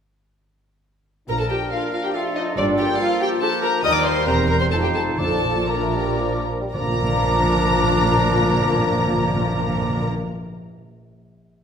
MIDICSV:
0, 0, Header, 1, 12, 480
1, 0, Start_track
1, 0, Key_signature, -2, "major"
1, 0, Tempo, 427046
1, 1451, Time_signature, 3, 2, 24, 8
1, 5295, Tempo, 500417
1, 6735, Tempo, 523560
1, 11710, End_track
2, 0, Start_track
2, 0, Title_t, "Flute section"
2, 0, Program_c, 0, 73
2, 1451, Note_on_c, 0, 82, 44
2, 1505, Note_off_c, 0, 82, 0
2, 1573, Note_on_c, 0, 81, 38
2, 1689, Note_on_c, 0, 79, 47
2, 1690, Note_off_c, 0, 81, 0
2, 1929, Note_on_c, 0, 77, 54
2, 1932, Note_off_c, 0, 79, 0
2, 2152, Note_off_c, 0, 77, 0
2, 2166, Note_on_c, 0, 77, 38
2, 2222, Note_off_c, 0, 77, 0
2, 2280, Note_on_c, 0, 79, 45
2, 2337, Note_off_c, 0, 79, 0
2, 2402, Note_on_c, 0, 77, 54
2, 2469, Note_off_c, 0, 77, 0
2, 2653, Note_on_c, 0, 75, 52
2, 2884, Note_on_c, 0, 74, 58
2, 2887, Note_off_c, 0, 75, 0
2, 3126, Note_off_c, 0, 74, 0
2, 3129, Note_on_c, 0, 79, 58
2, 3361, Note_off_c, 0, 79, 0
2, 3362, Note_on_c, 0, 77, 65
2, 3596, Note_on_c, 0, 79, 51
2, 3601, Note_off_c, 0, 77, 0
2, 3664, Note_off_c, 0, 79, 0
2, 3836, Note_on_c, 0, 81, 70
2, 3903, Note_off_c, 0, 81, 0
2, 4076, Note_on_c, 0, 82, 66
2, 4305, Note_off_c, 0, 82, 0
2, 4308, Note_on_c, 0, 87, 73
2, 4428, Note_off_c, 0, 87, 0
2, 4433, Note_on_c, 0, 86, 59
2, 4486, Note_off_c, 0, 86, 0
2, 4546, Note_on_c, 0, 84, 70
2, 4787, Note_off_c, 0, 84, 0
2, 4795, Note_on_c, 0, 82, 78
2, 5035, Note_off_c, 0, 82, 0
2, 5049, Note_on_c, 0, 82, 57
2, 5168, Note_off_c, 0, 82, 0
2, 5168, Note_on_c, 0, 84, 60
2, 5292, Note_off_c, 0, 84, 0
2, 5299, Note_on_c, 0, 81, 60
2, 5347, Note_off_c, 0, 81, 0
2, 5412, Note_on_c, 0, 79, 53
2, 5513, Note_on_c, 0, 81, 58
2, 5519, Note_off_c, 0, 79, 0
2, 5743, Note_off_c, 0, 81, 0
2, 5755, Note_on_c, 0, 81, 55
2, 6228, Note_off_c, 0, 81, 0
2, 6235, Note_on_c, 0, 82, 45
2, 6979, Note_off_c, 0, 82, 0
2, 7225, Note_on_c, 0, 82, 66
2, 10251, Note_off_c, 0, 82, 0
2, 11710, End_track
3, 0, Start_track
3, 0, Title_t, "Violin section"
3, 0, Program_c, 1, 48
3, 1458, Note_on_c, 1, 82, 61
3, 1566, Note_off_c, 1, 82, 0
3, 1567, Note_on_c, 1, 81, 45
3, 1680, Note_on_c, 1, 79, 51
3, 1687, Note_off_c, 1, 81, 0
3, 1922, Note_off_c, 1, 79, 0
3, 1922, Note_on_c, 1, 77, 53
3, 2149, Note_off_c, 1, 77, 0
3, 2163, Note_on_c, 1, 77, 51
3, 2276, Note_on_c, 1, 79, 49
3, 2286, Note_off_c, 1, 77, 0
3, 2403, Note_on_c, 1, 77, 54
3, 2404, Note_off_c, 1, 79, 0
3, 2493, Note_off_c, 1, 77, 0
3, 2641, Note_on_c, 1, 75, 53
3, 2731, Note_off_c, 1, 75, 0
3, 2885, Note_on_c, 1, 74, 72
3, 2975, Note_off_c, 1, 74, 0
3, 3124, Note_on_c, 1, 79, 64
3, 3352, Note_on_c, 1, 77, 71
3, 3359, Note_off_c, 1, 79, 0
3, 3595, Note_off_c, 1, 77, 0
3, 3602, Note_on_c, 1, 79, 77
3, 3692, Note_off_c, 1, 79, 0
3, 3835, Note_on_c, 1, 81, 78
3, 4066, Note_on_c, 1, 82, 74
3, 4067, Note_off_c, 1, 81, 0
3, 4301, Note_off_c, 1, 82, 0
3, 4314, Note_on_c, 1, 87, 95
3, 4429, Note_off_c, 1, 87, 0
3, 4438, Note_on_c, 1, 86, 64
3, 4547, Note_on_c, 1, 84, 79
3, 4554, Note_off_c, 1, 86, 0
3, 4793, Note_off_c, 1, 84, 0
3, 4809, Note_on_c, 1, 82, 73
3, 5034, Note_off_c, 1, 82, 0
3, 5048, Note_on_c, 1, 82, 61
3, 5168, Note_off_c, 1, 82, 0
3, 5170, Note_on_c, 1, 84, 73
3, 5221, Note_off_c, 1, 84, 0
3, 5298, Note_on_c, 1, 81, 64
3, 5341, Note_off_c, 1, 81, 0
3, 5413, Note_on_c, 1, 79, 57
3, 5456, Note_off_c, 1, 79, 0
3, 5519, Note_on_c, 1, 81, 66
3, 5596, Note_off_c, 1, 81, 0
3, 5752, Note_on_c, 1, 81, 67
3, 6227, Note_off_c, 1, 81, 0
3, 6237, Note_on_c, 1, 82, 52
3, 6980, Note_off_c, 1, 82, 0
3, 7220, Note_on_c, 1, 82, 79
3, 10246, Note_off_c, 1, 82, 0
3, 11710, End_track
4, 0, Start_track
4, 0, Title_t, "Oboe"
4, 0, Program_c, 2, 68
4, 1453, Note_on_c, 2, 70, 40
4, 2413, Note_on_c, 2, 69, 45
4, 2430, Note_off_c, 2, 70, 0
4, 3833, Note_off_c, 2, 69, 0
4, 3839, Note_on_c, 2, 67, 59
4, 4300, Note_off_c, 2, 67, 0
4, 4316, Note_on_c, 2, 70, 57
4, 4804, Note_on_c, 2, 72, 57
4, 4820, Note_off_c, 2, 70, 0
4, 5299, Note_off_c, 2, 72, 0
4, 5303, Note_on_c, 2, 72, 53
4, 5749, Note_on_c, 2, 74, 44
4, 5763, Note_off_c, 2, 72, 0
4, 6223, Note_off_c, 2, 74, 0
4, 6229, Note_on_c, 2, 74, 46
4, 6961, Note_off_c, 2, 74, 0
4, 7221, Note_on_c, 2, 74, 68
4, 10247, Note_off_c, 2, 74, 0
4, 11710, End_track
5, 0, Start_track
5, 0, Title_t, "Viola section"
5, 0, Program_c, 3, 48
5, 1446, Note_on_c, 3, 70, 42
5, 1495, Note_off_c, 3, 70, 0
5, 1572, Note_on_c, 3, 69, 43
5, 1690, Note_off_c, 3, 69, 0
5, 1690, Note_on_c, 3, 67, 43
5, 1780, Note_off_c, 3, 67, 0
5, 1935, Note_on_c, 3, 65, 46
5, 2162, Note_off_c, 3, 65, 0
5, 2176, Note_on_c, 3, 65, 42
5, 2293, Note_off_c, 3, 65, 0
5, 2298, Note_on_c, 3, 67, 43
5, 2413, Note_off_c, 3, 67, 0
5, 2416, Note_on_c, 3, 65, 56
5, 2654, Note_off_c, 3, 65, 0
5, 2654, Note_on_c, 3, 63, 50
5, 2888, Note_off_c, 3, 63, 0
5, 2896, Note_on_c, 3, 62, 62
5, 3127, Note_off_c, 3, 62, 0
5, 3130, Note_on_c, 3, 67, 57
5, 3366, Note_off_c, 3, 67, 0
5, 3366, Note_on_c, 3, 65, 62
5, 3598, Note_off_c, 3, 65, 0
5, 3605, Note_on_c, 3, 67, 66
5, 3695, Note_off_c, 3, 67, 0
5, 3842, Note_on_c, 3, 69, 68
5, 3932, Note_off_c, 3, 69, 0
5, 4072, Note_on_c, 3, 70, 77
5, 4162, Note_off_c, 3, 70, 0
5, 4317, Note_on_c, 3, 75, 73
5, 4363, Note_off_c, 3, 75, 0
5, 4436, Note_on_c, 3, 74, 68
5, 4548, Note_on_c, 3, 72, 68
5, 4550, Note_off_c, 3, 74, 0
5, 4793, Note_off_c, 3, 72, 0
5, 4794, Note_on_c, 3, 70, 68
5, 5028, Note_off_c, 3, 70, 0
5, 5041, Note_on_c, 3, 70, 66
5, 5165, Note_off_c, 3, 70, 0
5, 5166, Note_on_c, 3, 72, 55
5, 5217, Note_off_c, 3, 72, 0
5, 5296, Note_on_c, 3, 69, 65
5, 5403, Note_off_c, 3, 69, 0
5, 5406, Note_on_c, 3, 67, 54
5, 5519, Note_off_c, 3, 67, 0
5, 5525, Note_on_c, 3, 69, 59
5, 5739, Note_off_c, 3, 69, 0
5, 5750, Note_on_c, 3, 69, 56
5, 6226, Note_off_c, 3, 69, 0
5, 6236, Note_on_c, 3, 70, 44
5, 6979, Note_off_c, 3, 70, 0
5, 7222, Note_on_c, 3, 70, 59
5, 10249, Note_off_c, 3, 70, 0
5, 11710, End_track
6, 0, Start_track
6, 0, Title_t, "Violin section"
6, 0, Program_c, 4, 48
6, 1444, Note_on_c, 4, 70, 51
6, 1494, Note_off_c, 4, 70, 0
6, 1557, Note_on_c, 4, 69, 45
6, 1608, Note_off_c, 4, 69, 0
6, 1678, Note_on_c, 4, 67, 41
6, 1768, Note_off_c, 4, 67, 0
6, 1922, Note_on_c, 4, 65, 44
6, 2153, Note_off_c, 4, 65, 0
6, 2166, Note_on_c, 4, 65, 43
6, 2216, Note_off_c, 4, 65, 0
6, 2283, Note_on_c, 4, 67, 45
6, 2333, Note_off_c, 4, 67, 0
6, 2407, Note_on_c, 4, 65, 50
6, 2645, Note_off_c, 4, 65, 0
6, 2655, Note_on_c, 4, 63, 46
6, 2892, Note_on_c, 4, 62, 56
6, 2893, Note_off_c, 4, 63, 0
6, 2982, Note_off_c, 4, 62, 0
6, 3127, Note_on_c, 4, 67, 59
6, 3217, Note_off_c, 4, 67, 0
6, 3358, Note_on_c, 4, 65, 64
6, 3594, Note_off_c, 4, 65, 0
6, 3594, Note_on_c, 4, 67, 65
6, 3834, Note_off_c, 4, 67, 0
6, 3837, Note_on_c, 4, 69, 71
6, 4067, Note_off_c, 4, 69, 0
6, 4071, Note_on_c, 4, 70, 68
6, 4161, Note_off_c, 4, 70, 0
6, 4303, Note_on_c, 4, 75, 73
6, 4422, Note_on_c, 4, 74, 65
6, 4423, Note_off_c, 4, 75, 0
6, 4542, Note_on_c, 4, 72, 75
6, 4543, Note_off_c, 4, 74, 0
6, 4790, Note_off_c, 4, 72, 0
6, 4791, Note_on_c, 4, 70, 70
6, 4881, Note_off_c, 4, 70, 0
6, 5036, Note_on_c, 4, 70, 67
6, 5087, Note_off_c, 4, 70, 0
6, 5165, Note_on_c, 4, 72, 58
6, 5216, Note_off_c, 4, 72, 0
6, 5291, Note_on_c, 4, 69, 59
6, 5400, Note_on_c, 4, 67, 52
6, 5401, Note_off_c, 4, 69, 0
6, 5509, Note_on_c, 4, 69, 50
6, 5513, Note_off_c, 4, 67, 0
6, 5585, Note_off_c, 4, 69, 0
6, 5747, Note_on_c, 4, 69, 60
6, 6225, Note_off_c, 4, 69, 0
6, 6233, Note_on_c, 4, 70, 45
6, 6964, Note_off_c, 4, 70, 0
6, 7218, Note_on_c, 4, 82, 66
6, 10245, Note_off_c, 4, 82, 0
6, 11710, End_track
7, 0, Start_track
7, 0, Title_t, "Clarinet"
7, 0, Program_c, 5, 71
7, 1441, Note_on_c, 5, 62, 39
7, 1894, Note_off_c, 5, 62, 0
7, 1934, Note_on_c, 5, 62, 38
7, 2416, Note_on_c, 5, 65, 43
7, 2433, Note_off_c, 5, 62, 0
7, 2883, Note_off_c, 5, 65, 0
7, 2889, Note_on_c, 5, 65, 53
7, 3839, Note_on_c, 5, 62, 52
7, 3856, Note_off_c, 5, 65, 0
7, 4309, Note_off_c, 5, 62, 0
7, 4317, Note_on_c, 5, 63, 59
7, 4801, Note_on_c, 5, 60, 54
7, 4818, Note_off_c, 5, 63, 0
7, 5292, Note_off_c, 5, 60, 0
7, 5298, Note_on_c, 5, 63, 53
7, 5754, Note_on_c, 5, 62, 43
7, 5769, Note_off_c, 5, 63, 0
7, 6231, Note_off_c, 5, 62, 0
7, 6237, Note_on_c, 5, 62, 45
7, 6965, Note_off_c, 5, 62, 0
7, 7237, Note_on_c, 5, 62, 66
7, 10263, Note_off_c, 5, 62, 0
7, 11710, End_track
8, 0, Start_track
8, 0, Title_t, "French horn section"
8, 0, Program_c, 6, 60
8, 1443, Note_on_c, 6, 62, 38
8, 1444, Note_on_c, 6, 53, 40
8, 2843, Note_off_c, 6, 62, 0
8, 2889, Note_on_c, 6, 58, 53
8, 4260, Note_off_c, 6, 53, 0
8, 4279, Note_off_c, 6, 58, 0
8, 4311, Note_on_c, 6, 55, 62
8, 4311, Note_on_c, 6, 58, 56
8, 4761, Note_off_c, 6, 55, 0
8, 4761, Note_off_c, 6, 58, 0
8, 4792, Note_on_c, 6, 60, 57
8, 4793, Note_on_c, 6, 55, 55
8, 5283, Note_off_c, 6, 60, 0
8, 5284, Note_off_c, 6, 55, 0
8, 5297, Note_on_c, 6, 53, 47
8, 5300, Note_on_c, 6, 63, 48
8, 5739, Note_off_c, 6, 53, 0
8, 5751, Note_on_c, 6, 53, 43
8, 5752, Note_on_c, 6, 62, 42
8, 5755, Note_off_c, 6, 63, 0
8, 6226, Note_off_c, 6, 53, 0
8, 6237, Note_off_c, 6, 62, 0
8, 6245, Note_on_c, 6, 53, 49
8, 6247, Note_on_c, 6, 62, 43
8, 6969, Note_off_c, 6, 53, 0
8, 6970, Note_off_c, 6, 62, 0
8, 7231, Note_on_c, 6, 53, 65
8, 7235, Note_on_c, 6, 62, 66
8, 10257, Note_off_c, 6, 53, 0
8, 10261, Note_off_c, 6, 62, 0
8, 11710, End_track
9, 0, Start_track
9, 0, Title_t, "Bassoon"
9, 0, Program_c, 7, 70
9, 1444, Note_on_c, 7, 53, 36
9, 1925, Note_on_c, 7, 58, 38
9, 1942, Note_off_c, 7, 53, 0
9, 2411, Note_on_c, 7, 57, 43
9, 2428, Note_off_c, 7, 58, 0
9, 2884, Note_off_c, 7, 57, 0
9, 2890, Note_on_c, 7, 55, 49
9, 3365, Note_on_c, 7, 53, 53
9, 3382, Note_off_c, 7, 55, 0
9, 3830, Note_off_c, 7, 53, 0
9, 3837, Note_on_c, 7, 53, 53
9, 4299, Note_off_c, 7, 53, 0
9, 4303, Note_on_c, 7, 55, 55
9, 4757, Note_off_c, 7, 55, 0
9, 4792, Note_on_c, 7, 55, 59
9, 5293, Note_on_c, 7, 53, 51
9, 5308, Note_off_c, 7, 55, 0
9, 5747, Note_off_c, 7, 53, 0
9, 5753, Note_on_c, 7, 53, 47
9, 6224, Note_off_c, 7, 53, 0
9, 6230, Note_on_c, 7, 58, 53
9, 6287, Note_off_c, 7, 58, 0
9, 6357, Note_on_c, 7, 57, 45
9, 6477, Note_on_c, 7, 55, 51
9, 6491, Note_off_c, 7, 57, 0
9, 6717, Note_off_c, 7, 55, 0
9, 6723, Note_on_c, 7, 53, 52
9, 6836, Note_off_c, 7, 53, 0
9, 6972, Note_on_c, 7, 53, 45
9, 7091, Note_off_c, 7, 53, 0
9, 7097, Note_on_c, 7, 55, 45
9, 7153, Note_off_c, 7, 55, 0
9, 7219, Note_on_c, 7, 53, 68
9, 10245, Note_off_c, 7, 53, 0
9, 11710, End_track
10, 0, Start_track
10, 0, Title_t, "Timpani"
10, 0, Program_c, 8, 47
10, 5745, Note_on_c, 8, 46, 65
10, 6441, Note_off_c, 8, 46, 0
10, 7221, Note_on_c, 8, 46, 69
10, 7284, Note_off_c, 8, 46, 0
10, 7288, Note_on_c, 8, 46, 60
10, 7344, Note_off_c, 8, 46, 0
10, 7344, Note_on_c, 8, 46, 70
10, 7407, Note_off_c, 8, 46, 0
10, 7409, Note_on_c, 8, 46, 57
10, 7472, Note_off_c, 8, 46, 0
10, 7474, Note_on_c, 8, 46, 69
10, 7537, Note_off_c, 8, 46, 0
10, 7538, Note_on_c, 8, 46, 59
10, 7601, Note_off_c, 8, 46, 0
10, 7604, Note_on_c, 8, 46, 62
10, 7667, Note_off_c, 8, 46, 0
10, 7667, Note_on_c, 8, 46, 60
10, 7726, Note_off_c, 8, 46, 0
10, 7726, Note_on_c, 8, 46, 62
10, 7789, Note_off_c, 8, 46, 0
10, 7790, Note_on_c, 8, 46, 60
10, 7853, Note_off_c, 8, 46, 0
10, 7853, Note_on_c, 8, 46, 67
10, 7913, Note_off_c, 8, 46, 0
10, 7913, Note_on_c, 8, 46, 58
10, 7975, Note_off_c, 8, 46, 0
10, 7975, Note_on_c, 8, 46, 67
10, 8037, Note_off_c, 8, 46, 0
10, 8037, Note_on_c, 8, 46, 59
10, 8100, Note_off_c, 8, 46, 0
10, 8101, Note_on_c, 8, 46, 63
10, 8162, Note_off_c, 8, 46, 0
10, 8162, Note_on_c, 8, 46, 64
10, 8223, Note_off_c, 8, 46, 0
10, 8223, Note_on_c, 8, 46, 60
10, 8286, Note_off_c, 8, 46, 0
10, 8289, Note_on_c, 8, 46, 62
10, 8344, Note_off_c, 8, 46, 0
10, 8344, Note_on_c, 8, 46, 65
10, 8404, Note_off_c, 8, 46, 0
10, 8404, Note_on_c, 8, 46, 64
10, 8465, Note_off_c, 8, 46, 0
10, 8465, Note_on_c, 8, 46, 63
10, 8528, Note_off_c, 8, 46, 0
10, 8532, Note_on_c, 8, 46, 58
10, 8595, Note_off_c, 8, 46, 0
10, 8600, Note_on_c, 8, 46, 66
10, 8660, Note_off_c, 8, 46, 0
10, 8660, Note_on_c, 8, 46, 64
10, 8723, Note_off_c, 8, 46, 0
10, 8723, Note_on_c, 8, 46, 68
10, 8786, Note_off_c, 8, 46, 0
10, 8786, Note_on_c, 8, 46, 61
10, 8849, Note_off_c, 8, 46, 0
10, 8851, Note_on_c, 8, 46, 63
10, 8914, Note_off_c, 8, 46, 0
10, 8915, Note_on_c, 8, 46, 61
10, 8973, Note_off_c, 8, 46, 0
10, 8973, Note_on_c, 8, 46, 62
10, 9031, Note_off_c, 8, 46, 0
10, 9031, Note_on_c, 8, 46, 61
10, 9090, Note_off_c, 8, 46, 0
10, 9090, Note_on_c, 8, 46, 66
10, 9153, Note_off_c, 8, 46, 0
10, 9156, Note_on_c, 8, 46, 55
10, 9218, Note_off_c, 8, 46, 0
10, 9218, Note_on_c, 8, 46, 60
10, 9278, Note_off_c, 8, 46, 0
10, 9278, Note_on_c, 8, 46, 63
10, 9341, Note_off_c, 8, 46, 0
10, 9345, Note_on_c, 8, 46, 61
10, 9408, Note_off_c, 8, 46, 0
10, 9409, Note_on_c, 8, 46, 66
10, 9472, Note_off_c, 8, 46, 0
10, 9472, Note_on_c, 8, 46, 65
10, 9535, Note_off_c, 8, 46, 0
10, 9538, Note_on_c, 8, 46, 60
10, 9601, Note_off_c, 8, 46, 0
10, 9603, Note_on_c, 8, 46, 64
10, 9666, Note_off_c, 8, 46, 0
10, 9666, Note_on_c, 8, 46, 63
10, 9726, Note_off_c, 8, 46, 0
10, 9726, Note_on_c, 8, 46, 64
10, 9789, Note_off_c, 8, 46, 0
10, 9793, Note_on_c, 8, 46, 61
10, 9853, Note_off_c, 8, 46, 0
10, 9853, Note_on_c, 8, 46, 64
10, 9916, Note_off_c, 8, 46, 0
10, 9921, Note_on_c, 8, 46, 57
10, 9981, Note_off_c, 8, 46, 0
10, 9981, Note_on_c, 8, 46, 67
10, 10040, Note_off_c, 8, 46, 0
10, 10040, Note_on_c, 8, 46, 59
10, 10103, Note_off_c, 8, 46, 0
10, 10110, Note_on_c, 8, 46, 66
10, 10173, Note_off_c, 8, 46, 0
10, 10174, Note_on_c, 8, 46, 67
10, 10237, Note_off_c, 8, 46, 0
10, 11710, End_track
11, 0, Start_track
11, 0, Title_t, "Cello section"
11, 0, Program_c, 10, 48
11, 1445, Note_on_c, 10, 46, 49
11, 1828, Note_off_c, 10, 46, 0
11, 2886, Note_on_c, 10, 43, 64
11, 3264, Note_off_c, 10, 43, 0
11, 4316, Note_on_c, 10, 39, 64
11, 4764, Note_off_c, 10, 39, 0
11, 4799, Note_on_c, 10, 40, 64
11, 5297, Note_off_c, 10, 40, 0
11, 5304, Note_on_c, 10, 41, 54
11, 5755, Note_on_c, 10, 46, 47
11, 5757, Note_off_c, 10, 41, 0
11, 6974, Note_off_c, 10, 46, 0
11, 7229, Note_on_c, 10, 46, 65
11, 10256, Note_off_c, 10, 46, 0
11, 11710, End_track
12, 0, Start_track
12, 0, Title_t, "Double bass section"
12, 0, Program_c, 11, 48
12, 1440, Note_on_c, 11, 34, 47
12, 1826, Note_off_c, 11, 34, 0
12, 2883, Note_on_c, 11, 31, 61
12, 3262, Note_off_c, 11, 31, 0
12, 4305, Note_on_c, 11, 39, 60
12, 4758, Note_off_c, 11, 39, 0
12, 4787, Note_on_c, 11, 28, 61
12, 5291, Note_off_c, 11, 28, 0
12, 5298, Note_on_c, 11, 29, 53
12, 5754, Note_off_c, 11, 29, 0
12, 5756, Note_on_c, 11, 34, 44
12, 6974, Note_off_c, 11, 34, 0
12, 7224, Note_on_c, 11, 34, 60
12, 10250, Note_off_c, 11, 34, 0
12, 11710, End_track
0, 0, End_of_file